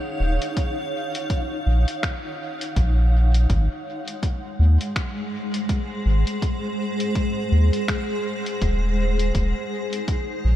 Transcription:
Already playing: ambient pad D#4 C#5 F5 F#5
0.20 sub bass D#1
0.42 closed hi-hat
0.57 kick, closed hi-hat
1.15 closed hi-hat
1.30 kick, closed hi-hat
1.67 sub bass A#1
1.88 closed hi-hat
2.03 finger snap, kick, closed hi-hat
2.61 closed hi-hat
2.76 sub bass A#1, kick, closed hi-hat
3.34 closed hi-hat
3.50 sub bass G#1, ambient pad G#3, kick, closed hi-hat
3.98 ambient pad G#4
4.08 closed hi-hat
4.23 kick, closed hi-hat
4.59 sub bass D#2
4.81 closed hi-hat
4.92 ambient pad C5, finger snap, closed hi-hat
4.96 kick
5.54 closed hi-hat
5.69 kick, closed hi-hat
6.06 sub bass G#1
6.27 closed hi-hat
6.42 kick, closed hi-hat
7.00 closed hi-hat
7.15 kick, closed hi-hat
7.52 sub bass D#2
7.73 closed hi-hat
7.88 finger snap, kick, closed hi-hat
8.46 closed hi-hat
8.62 sub bass D#1, kick, closed hi-hat
9.19 closed hi-hat
9.35 sub bass D#1, ambient pad D#4, kick, closed hi-hat
9.74 ambient pad C#5
9.93 closed hi-hat
10.08 kick, closed hi-hat
10.45 sub bass A#1

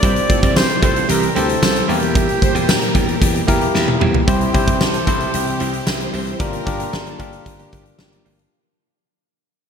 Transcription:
Already playing: flugelhorn D5
0.02 slap bass C2, string machine C3 E3 G3 E4 G4, analog polysynth G3 E4 C5, clean electric guitar G3 C4 E4 G4, tine electric piano C4 E4 G4 C5, kick, closed hi-hat
0.16 closed hi-hat
0.29 analog polysynth A3 F4 A4, muted clean electric guitar stroke, kick, closed hi-hat
0.43 slap bass C2, clean electric guitar G3 C4 E4 G4, kick, closed hi-hat
0.56 analog polysynth E3 C4 G4, flugelhorn C5, muted clean electric guitar stroke, snare, tambourine
0.69 muted clean electric guitar stroke, closed hi-hat
0.82 slap bass C2, clean electric guitar G3 C4 E4 G4, analog polysynth A3 F4 A4, flugelhorn C5, kick, closed hi-hat
0.95 clean electric guitar G3 E4 G4, closed hi-hat
1.09 slap bass C2, analog polysynth E3 C4 G4, flugelhorn A#4, closed hi-hat
1.22 muted clean electric guitar stroke, closed hi-hat
1.35 slap bass D2, clean electric guitar G3 C4 E4 G4, tine electric piano C4 E4 G4 C5, flugelhorn A4, closed hi-hat
1.49 muted clean electric guitar stroke, closed hi-hat
1.62 slap bass C2, snare, tambourine
1.75 muted clean electric guitar stroke, closed hi-hat
1.88 slap bass E2, string machine A#2 E3, clean electric guitar G3 A#3 E4 G4, tine electric piano A#3 E4 G4 A#4, flugelhorn G4, open hi-hat
2.01 muted clean electric guitar stroke, closed hi-hat
2.15 clean electric guitar G3 A#3 E4 G4, kick, closed hi-hat
2.29 closed hi-hat
2.42 violin section C5, muted clean electric guitar stroke, kick, closed hi-hat
2.55 slap bass E2, clean electric guitar G3 A#3 E4 G4, closed hi-hat
2.68 violin section A#4, muted clean electric guitar stroke, snare, tambourine
2.81 muted clean electric guitar stroke, closed hi-hat
2.94 slap bass E2, clean electric guitar G3 A#3 E4 G4, kick, closed hi-hat
3.07 clean electric guitar G3 A#3 E4 G4, closed hi-hat
3.21 slap bass E2, violin section G4, kick, closed hi-hat
3.34 muted clean electric guitar stroke, closed hi-hat
3.47 slap bass E2, clean electric guitar G3 A#3 E4 G4, tine electric piano A#3 E4 G4 A#4, violin section G4, kick, closed hi-hat
3.61 muted clean electric guitar stroke, closed hi-hat
3.74 slap bass E2, violin section E4, snare
3.87 muted clean electric guitar stroke, high tom
4.01 slap bass E2, clean electric guitar G3 A#3 E4 G4, mid tom
4.14 muted clean electric guitar stroke, floor tom
4.27 slap bass C2, string machine C3 E3 G3 E4 G4, clean electric guitar G3 C4 E4 G4, analog polysynth G3 E4 C5, tine electric piano C4 E4 G4 C5, violin section G4, kick, closed hi-hat
4.41 closed hi-hat
4.53 slap bass C2, tine electric piano C4 E4 G4 C5, muted clean electric guitar stroke, kick, closed hi-hat
4.67 clean electric guitar G3 C4 E4 G4, kick, closed hi-hat
4.81 slap bass C2, violin section A4, muted clean electric guitar stroke, snare, tambourine
4.94 muted clean electric guitar stroke, closed hi-hat
5.07 slap bass C2, clean electric guitar G3 C4 E4 G4, tine electric piano C4 E4 G4 C5, kick, closed hi-hat
5.20 clean electric guitar G3 C4 E4 G4, closed hi-hat
5.33 slap bass C2, violin section G4, closed hi-hat
5.47 muted clean electric guitar stroke, closed hi-hat
5.60 slap bass C2, clean electric guitar G3 C4 E4 G4, closed hi-hat
5.73 muted clean electric guitar stroke, closed hi-hat
5.87 slap bass C2, violin section C5, snare, tambourine
6.00 muted clean electric guitar stroke, closed hi-hat
6.13 slap bass C2, clean electric guitar G3 C4 E4 G4, open hi-hat
6.27 muted clean electric guitar stroke, closed hi-hat
6.39 slap bass G1, string machine D3 A#3 F4, clean electric guitar F3 A#3 D4 G4, analog polysynth A#3 G4 D5, tine electric piano D4 F4 G4 A#4, violin section A#4, kick, closed hi-hat
6.53 closed hi-hat
6.66 slap bass G1, tine electric piano D4 F4 G4 A#4, muted clean electric guitar stroke, kick, closed hi-hat
6.80 clean electric guitar F3 A#3 D4 G4, closed hi-hat
6.93 slap bass G1, violin section A4, snare
7.06 muted clean electric guitar stroke, closed hi-hat
7.19 slap bass G1, clean electric guitar F3 A#3 D4 G4, tine electric piano D4 F4 G4 A#4, kick, closed hi-hat
7.33 closed hi-hat
7.46 slap bass G1, violin section G4, kick, closed hi-hat
7.59 clean electric guitar F3 A#3 D4 G4, closed hi-hat
7.72 slap bass G1, clean electric guitar F3 A#3 D4 G4, kick, closed hi-hat
7.85 muted clean electric guitar stroke, closed hi-hat
7.99 slap bass G1, violin section G4, snare
8.12 muted clean electric guitar stroke, closed hi-hat
8.25 slap bass G1, clean electric guitar F3 A#3 D4 G4, violin section F4, open hi-hat
8.39 muted clean electric guitar stroke, closed hi-hat

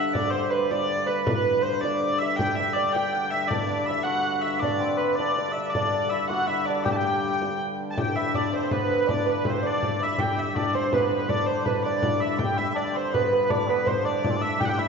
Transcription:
Already playing: harmonium G2 D3, hurdy-gurdy E5, lute E5
0.13 hurdy-gurdy D5, lute D5, frame drum
0.30 hurdy-gurdy C5, lute C5, frame drum
0.50 hurdy-gurdy B4, frame drum
0.71 hurdy-gurdy D5, lute D5, frame drum
0.90 frame drum
1.07 hurdy-gurdy B4, lute B4, frame drum
1.26 hurdy-gurdy B4, lute B4, frame drum
1.46 frame drum
1.62 hurdy-gurdy C5, lute C5, frame drum
1.81 hurdy-gurdy D5, lute D5, frame drum
2.02 frame drum
2.18 hurdy-gurdy E5, lute E5
2.36 hurdy-gurdy G5, lute G5, frame drum
2.56 hurdy-gurdy E5
2.60 lute E5
2.73 hurdy-gurdy D5, lute D5
2.93 hurdy-gurdy G5, lute G5, frame drum
3.15 lute F#5
3.31 hurdy-gurdy E5, lute E5, frame drum
3.48 harmonium G2 D3, muted trumpet D4, hurdy-gurdy D5, frame drum
3.53 lute D5
3.69 muted trumpet D4, frame drum
3.86 muted trumpet E4, hurdy-gurdy E5, frame drum
3.90 lute E5
4.03 muted trumpet F#4, hurdy-gurdy F#5, frame drum
4.10 lute F#5
4.26 frame drum
4.41 hurdy-gurdy E5, frame drum
4.47 lute E5
4.60 muted trumpet D4, hurdy-gurdy D5, frame drum
4.64 lute D5
4.81 muted trumpet C4, frame drum
4.97 hurdy-gurdy B4, lute B4, frame drum
5.16 muted trumpet D4, hurdy-gurdy D5, lute D5, frame drum
5.30 muted trumpet E4
5.37 muted trumpet D4, lute D5, frame drum
5.52 hurdy-gurdy E5, frame drum
5.57 lute E5
5.70 hurdy-gurdy D5
5.75 muted trumpet D4, lute D5, frame drum
5.93 frame drum
6.08 muted trumpet E4, hurdy-gurdy E5, lute E5 F#5, frame drum
6.27 muted trumpet F#4, hurdy-gurdy F#5, lute F#5, frame drum
6.47 muted trumpet E4, hurdy-gurdy E5, lute E5, frame drum
6.65 muted trumpet D4, hurdy-gurdy D5, frame drum
6.70 lute D5
6.84 muted trumpet G4, hurdy-gurdy G5, lute G5, frame drum
6.92 hurdy-gurdy A5
6.97 muted trumpet G4, hurdy-gurdy G5
7.01 lute G5
7.24 frame drum
7.42 frame drum
7.79 frame drum
7.91 hurdy-gurdy A5
7.97 harmonium G2 D3, muted trumpet G4, lute G5, hurdy-gurdy G5, frame drum
8.16 muted trumpet E4, lute E5, hurdy-gurdy E5
8.34 muted trumpet D4, lute D5, hurdy-gurdy D5, frame drum
8.53 muted trumpet C4, lute C5, hurdy-gurdy C5, frame drum
8.71 muted trumpet B3, hurdy-gurdy B4, frame drum
8.90 lute B4, hurdy-gurdy B4, frame drum
9.07 muted trumpet D4, lute D5, hurdy-gurdy D5, frame drum
9.26 lute B4, frame drum
9.30 hurdy-gurdy B4
9.45 muted trumpet C4, frame drum
9.49 hurdy-gurdy C5
9.63 muted trumpet D4, lute D5, frame drum
9.67 hurdy-gurdy D5
9.83 frame drum
10.00 muted trumpet E4, lute E5, hurdy-gurdy E5, frame drum
10.18 muted trumpet G4, lute G5, hurdy-gurdy G5, frame drum
10.37 lute E5, hurdy-gurdy E5, frame drum
10.56 muted trumpet D4, hurdy-gurdy D5, frame drum
10.75 muted trumpet C4, lute C5, hurdy-gurdy C5, frame drum
10.93 muted trumpet B3, lute B4, hurdy-gurdy B4, frame drum
11.10 lute B4, hurdy-gurdy B4, frame drum
11.29 muted trumpet D4, hurdy-gurdy D5, lute D5, frame drum
11.47 hurdy-gurdy C5, lute C5, frame drum
11.66 hurdy-gurdy B4, lute B4, frame drum
11.83 muted trumpet D4, hurdy-gurdy D5, lute D5, frame drum
12.03 frame drum
12.20 muted trumpet E4, hurdy-gurdy E5, lute E5, frame drum
12.38 harmonium G2 D3, muted trumpet G4, hurdy-gurdy G5, lute G5, frame drum
12.56 muted trumpet E4, hurdy-gurdy E5, lute E5, frame drum
12.74 muted trumpet D4, hurdy-gurdy D5, lute D5
12.93 muted trumpet C4, lute C5, hurdy-gurdy C5, frame drum
13.13 muted trumpet B3, hurdy-gurdy B4, lute B4, frame drum
13.31 muted trumpet B3, lute B4, hurdy-gurdy B4, frame drum
13.49 muted trumpet D4, lute D5, hurdy-gurdy D5, frame drum
13.68 muted trumpet B3, lute B4, hurdy-gurdy B4, frame drum
13.86 lute C5, hurdy-gurdy C5, frame drum
14.04 muted trumpet D4, hurdy-gurdy D5, lute D5, frame drum
14.22 muted trumpet D4, frame drum
14.31 muted trumpet C4
14.37 muted trumpet D4
14.41 lute E5, hurdy-gurdy E5, frame drum
14.60 muted trumpet G4, lute G5, hurdy-gurdy G5, frame drum
14.65 hurdy-gurdy F#5 G5
14.70 muted trumpet G4, lute G5
14.78 muted trumpet E4, lute E5, hurdy-gurdy E5, frame drum

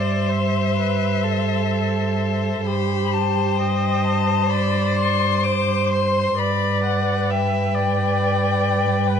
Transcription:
Already playing: cello G2, violin C5 E5, viola D5
0.29 viola C5
0.77 viola B4
1.24 viola A4
2.66 cello G2, viola G4, violin C5 B5
3.13 violin A5
3.58 viola D#5, violin G5
4.04 violin A5
4.50 viola D5, violin B5
4.97 violin C6
5.44 viola C5, violin D6
5.92 violin C6
6.38 cello G2, violin B4 B5, viola D5
6.84 violin F#5
7.30 viola E5, violin G5
7.75 viola D5
9.08 viola B4

